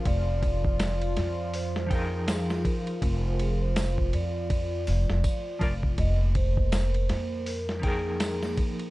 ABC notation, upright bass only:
X:1
M:4/4
L:1/16
Q:"Swing 16ths" 1/4=81
K:Fdor
V:1 name="Upright bass" clef=bass
F,,,6 F,,8 z2 | F,,,6 F,,4 F,,, F,,, z2 F,,,2 | F,,,6 F,,8 z2 |]